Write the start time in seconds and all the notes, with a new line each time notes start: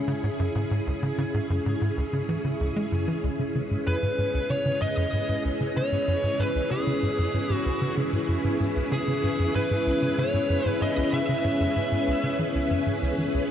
Already playing: C#4 E4 G#4
0.08 C#3
0.24 G#2
0.40 F#2
0.55 G#2
0.71 G#2
0.87 C#2
1.03 C#3
1.18 C#3
1.34 G#2
1.50 F#2
1.66 G#2
1.82 G#2
1.97 C#2
2.13 C#3
2.29 E3
2.45 C#3
2.60 C#2
2.76 G#3
2.92 F#2
3.08 E3
3.24 C#2 C#4
3.35 G#4
3.39 C#3
3.50 B4
3.55 C#3
3.71 G#2
3.87 F#2 B4
4.03 G#2
4.19 G#2
4.34 C#2
4.50 C#3 C#5
4.66 C#3
4.82 G#2 D#5
4.97 F#2 E4
5.13 G#2
5.29 G#2
5.45 C#2
5.61 C#3
5.77 C#3 C#5
5.92 G#2
6.08 F#2
6.24 G#2
6.39 G#2 B4
6.55 C#2
6.71 C#3 G#4
6.87 C#3
7.03 G#2
7.19 F#2
7.34 G#2
7.50 G#2
7.54 F#4
7.66 C#2
7.82 C#3
7.97 C#3
8.13 G#2
8.29 F#2
8.45 G#2
8.61 G#2
8.76 C#2
8.92 C#3 G#4
9.08 C#3
9.24 G#2
9.39 F#2
9.55 G#2 B4
9.71 G#2
9.87 C#2
10.03 C#3
10.18 C#3 C#5
10.34 G#2
10.50 F#2
10.66 G#2 B4
10.81 G#2 D#5
10.97 C#2
11.13 C#3 E5
11.29 C#3
11.45 G#2
11.60 F#2
11.76 G#2
11.92 G#2
12.08 C#2
12.24 C#3
12.39 E3
12.55 C#2
12.71 F#2
12.87 G#2
13.02 C#2
13.18 E3
13.34 C#2